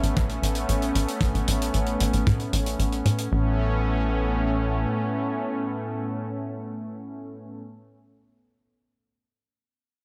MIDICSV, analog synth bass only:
0, 0, Header, 1, 2, 480
1, 0, Start_track
1, 0, Key_signature, 3, "major"
1, 0, Tempo, 526316
1, 1105, Time_signature, 4, 2, 24, 8
1, 9164, End_track
2, 0, Start_track
2, 0, Title_t, "Analog synth bass"
2, 0, Program_c, 0, 38
2, 26, Note_on_c, 0, 33, 87
2, 130, Note_off_c, 0, 33, 0
2, 153, Note_on_c, 0, 33, 96
2, 358, Note_off_c, 0, 33, 0
2, 387, Note_on_c, 0, 33, 80
2, 595, Note_off_c, 0, 33, 0
2, 628, Note_on_c, 0, 33, 80
2, 835, Note_off_c, 0, 33, 0
2, 867, Note_on_c, 0, 33, 87
2, 971, Note_off_c, 0, 33, 0
2, 1100, Note_on_c, 0, 33, 97
2, 1207, Note_off_c, 0, 33, 0
2, 1227, Note_on_c, 0, 33, 92
2, 1330, Note_off_c, 0, 33, 0
2, 1347, Note_on_c, 0, 33, 96
2, 1555, Note_off_c, 0, 33, 0
2, 1588, Note_on_c, 0, 33, 85
2, 1795, Note_off_c, 0, 33, 0
2, 1828, Note_on_c, 0, 33, 86
2, 1931, Note_off_c, 0, 33, 0
2, 1946, Note_on_c, 0, 33, 86
2, 2050, Note_off_c, 0, 33, 0
2, 2070, Note_on_c, 0, 45, 94
2, 2276, Note_off_c, 0, 45, 0
2, 2306, Note_on_c, 0, 33, 97
2, 2515, Note_off_c, 0, 33, 0
2, 2545, Note_on_c, 0, 33, 86
2, 2754, Note_off_c, 0, 33, 0
2, 2786, Note_on_c, 0, 45, 88
2, 2994, Note_off_c, 0, 45, 0
2, 3026, Note_on_c, 0, 33, 93
2, 4429, Note_off_c, 0, 33, 0
2, 9164, End_track
0, 0, End_of_file